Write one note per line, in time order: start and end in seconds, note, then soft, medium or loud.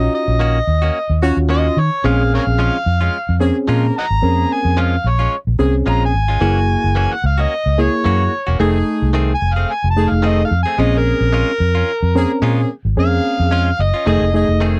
0.00 0.40 C#4 medium
0.00 0.58 C#4 medium
0.00 0.40 D#4 medium
0.00 0.59 F4 medium
0.00 0.59 F#4 medium
0.00 0.12 D#5 medium
0.15 1.20 D#5 loud
0.28 0.59 A#1 medium
0.39 0.57 D#3 medium
0.39 0.58 A#3 medium
0.39 0.58 C#4 medium
0.39 0.58 F#4 medium
0.67 0.89 D#2 medium
0.82 0.98 A#3 soft
0.82 0.98 C#4 medium
0.82 0.97 F#4 medium
1.10 1.31 D#2 medium
1.22 1.37 C#4 medium
1.22 1.77 C#4 medium
1.22 1.37 D#4 medium
1.22 1.76 F4 medium
1.22 1.37 F#4 loud
1.22 1.76 F#4 medium
1.37 1.68 D#2 medium
1.49 1.67 D#3 medium
1.49 1.67 A#3 medium
1.49 1.77 C#4 medium
1.49 1.67 C#4 medium
1.49 1.76 D#4 medium
1.49 1.77 F4 medium
1.49 1.68 F#4 medium
1.49 1.81 D#5 loud
1.77 1.89 D#3 medium
1.77 2.08 C#5 medium
2.03 2.38 A#1 loud
2.03 2.22 F3 medium
2.03 2.22 G#3 medium
2.03 2.58 A#3 medium
2.03 2.77 C4 medium
2.03 2.77 C#4 medium
2.03 2.22 C#4 medium
2.03 2.22 F4 medium
2.03 2.58 G#4 medium
2.03 2.77 G#4 medium
2.03 2.32 F5 medium
2.35 2.42 A#4 medium
2.35 2.43 C#5 medium
2.35 3.39 F5 loud
2.47 2.68 A#1 medium
2.59 2.76 F3 medium
2.59 2.77 G#3 medium
2.59 2.77 C#4 medium
2.59 2.77 F4 medium
2.86 3.08 F2 loud
3.01 3.17 G#3 soft
3.01 3.17 C#4 medium
3.01 3.16 F4 medium
3.29 3.50 F2 medium
3.40 3.56 A#3 medium
3.40 3.95 C4 medium
3.40 3.56 C#4 medium
3.40 3.95 C#4 medium
3.40 3.56 G#4 loud
3.40 3.95 G#4 medium
3.67 3.90 A#2 medium
3.67 3.85 F3 medium
3.67 3.86 G#3 medium
3.67 3.95 A#3 medium
3.67 3.95 C#4 medium
3.67 3.86 C#4 medium
3.67 3.86 F4 medium
3.67 3.95 A#4 medium
3.98 4.05 D#5 medium
3.98 4.05 F#5 medium
3.98 4.54 A#5 loud
4.10 4.20 G#1 medium
4.22 4.44 F2 medium
4.22 4.77 A#3 medium
4.22 4.96 C4 medium
4.22 4.96 C#4 medium
4.22 4.77 G#4 medium
4.22 4.96 A#4 medium
4.53 4.83 G#5 medium
4.65 4.96 F2 medium
4.77 4.95 F3 medium
4.77 4.95 G#3 medium
4.77 4.95 C#4 medium
4.77 4.95 F4 medium
4.81 5.11 F5 medium
5.04 5.26 A#1 medium
5.09 5.34 C#5 medium
5.19 5.36 G#3 soft
5.19 5.35 C#4 soft
5.19 5.35 F4 soft
5.47 5.57 A#1 medium
5.58 5.84 C2 medium
5.58 5.74 A#3 medium
5.58 6.13 C4 medium
5.58 5.74 C#4 medium
5.58 6.13 C#4 medium
5.58 5.74 G#4 medium
5.58 6.13 G#4 medium
5.86 6.11 A#1 medium
5.86 6.04 F3 medium
5.86 6.04 G#3 medium
5.86 6.14 A#3 medium
5.86 6.14 C#4 medium
5.86 6.04 C#4 medium
5.86 6.05 F4 medium
5.86 6.14 G#4 medium
5.86 6.02 A#5 medium
6.06 7.15 G#5 loud
6.14 6.39 G#1 medium
6.28 6.41 G#3 soft
6.28 6.40 C#4 soft
6.28 6.41 F4 soft
6.40 6.75 F#1 loud
6.40 6.59 E3 medium
6.40 6.96 A#3 medium
6.40 6.59 A#3 medium
6.40 7.14 A#3 medium
6.40 6.59 C#4 medium
6.40 6.96 E4 medium
6.40 7.14 E4 medium
6.40 6.96 F#4 medium
6.40 6.59 F#4 medium
6.40 7.14 G#4 medium
6.84 7.06 F#1 medium
6.95 7.13 E3 medium
6.95 7.14 A#3 medium
6.95 7.14 C#4 medium
6.95 7.14 F#4 medium
7.14 7.24 F#5 medium
7.24 7.45 C#2 loud
7.24 7.43 F5 medium
7.38 7.54 A#3 soft
7.38 7.54 C#4 soft
7.38 7.53 F#4 soft
7.38 7.82 D#5 medium
7.66 7.88 C#2 medium
7.77 7.93 A#3 medium
7.77 8.32 A#3 medium
7.77 7.93 E4 medium
7.77 8.32 E4 medium
7.77 7.93 G#4 medium
7.77 8.32 G#4 medium
7.77 8.59 C#5 loud
8.04 8.27 F#2 medium
8.04 8.22 E3 medium
8.04 8.32 A#3 medium
8.04 8.23 A#3 medium
8.04 8.23 C#4 medium
8.04 8.32 E4 medium
8.04 8.33 F#4 medium
8.04 8.23 F#4 medium
8.47 8.58 E1 medium
8.47 8.59 A#3 soft
8.47 8.60 C#4 soft
8.47 8.60 F#4 medium
8.59 8.81 F1 medium
8.59 8.77 D#3 medium
8.59 9.14 A3 loud
8.59 8.77 A3 medium
8.59 9.33 A3 medium
8.59 8.78 C4 medium
8.59 9.14 D#4 medium
8.59 9.33 D#4 medium
8.59 9.33 G#4 medium
8.59 9.15 G#4 loud
8.59 8.78 G#4 medium
9.02 9.34 C2 medium
9.13 9.32 D#3 medium
9.13 9.32 A3 medium
9.13 9.32 C4 loud
9.13 9.32 G#4 medium
9.35 9.55 G#5 loud
9.42 9.64 F1 medium
9.54 9.72 C4 soft
9.54 9.72 G#4 soft
9.54 9.74 F5 medium
9.58 9.73 A3 soft
9.72 9.89 G#5 medium
9.84 10.06 F1 medium
9.90 10.11 A5 medium
9.96 10.12 A3 medium
9.96 10.51 A3 medium
9.96 10.51 D#4 medium
9.96 10.12 D#4 medium
9.96 10.51 G#4 medium
9.96 10.12 G#4 medium
10.09 10.43 F1 medium
10.09 10.28 F5 medium
10.22 10.41 D#3 medium
10.22 10.41 A3 medium
10.22 10.51 A3 medium
10.22 10.41 C4 medium
10.22 10.51 D#4 medium
10.22 10.42 G#4 medium
10.22 10.52 A4 medium
10.27 10.43 D#5 medium
10.45 10.61 F5 medium
10.51 10.63 F2 loud
10.63 10.79 C4 soft
10.63 10.78 G#4 soft
10.63 10.82 G#5 medium
10.68 10.78 A3 soft
10.78 11.12 A#1 loud
10.78 10.96 G#3 medium
10.78 11.33 A#3 medium
10.78 11.52 C4 medium
10.78 10.96 C#4 medium
10.78 11.52 C#4 medium
10.78 10.97 F4 medium
10.78 11.52 G#4 medium
10.78 11.34 G#4 medium
10.78 11.00 D#5 loud
10.99 12.58 A#4 loud
11.21 11.43 A#1 medium
11.33 11.51 G#3 medium
11.33 11.51 C#4 medium
11.33 11.51 F4 medium
11.60 11.82 F2 loud
11.75 11.92 C#4 soft
11.75 11.91 F4 medium
12.03 12.24 F2 medium
12.15 12.31 A#3 medium
12.15 12.69 C4 medium
12.15 12.31 C#4 medium
12.15 12.70 C#4 medium
12.15 12.31 G#4 loud
12.15 12.69 A#4 loud
12.42 12.64 A#2 loud
12.42 12.60 G#3 medium
12.42 12.70 A#3 medium
12.42 12.70 C#4 medium
12.42 12.60 C#4 loud
12.42 12.61 F4 medium
12.42 12.70 G#4 medium
12.85 12.95 G#1 medium
12.97 13.19 F2 medium
12.97 13.52 A#3 medium
12.97 13.70 C4 medium
12.97 13.70 C#4 medium
12.97 13.52 G#4 medium
12.97 13.70 G#4 medium
12.97 13.83 F5 loud
13.40 13.71 F2 medium
13.51 13.69 G#3 medium
13.51 13.70 C#4 medium
13.51 13.70 F4 medium
13.79 13.91 F#1 medium
13.79 14.07 D#5 medium
13.94 14.07 C#4 soft
13.94 14.06 F4 medium
14.06 14.19 F1 loud
14.06 14.24 D#3 medium
14.06 14.29 A3 medium
14.06 14.24 A3 medium
14.06 14.24 C4 medium
14.06 14.29 D#4 medium
14.06 14.29 G#4 medium
14.06 14.25 G#4 medium
14.06 14.34 D#5 loud
14.21 14.43 F1 medium
14.33 14.49 A3 medium
14.33 14.80 A3 medium
14.33 14.49 D#4 medium
14.33 14.80 D#4 medium
14.33 14.49 G#4 medium
14.33 14.80 G#4 medium
14.33 14.61 D#5 loud
14.49 14.80 F1 medium
14.60 14.78 D#3 medium
14.60 14.80 A3 medium
14.60 14.79 A3 medium
14.60 14.79 C4 medium
14.60 14.80 D#4 medium
14.60 14.80 G#4 medium
14.60 14.79 G#4 medium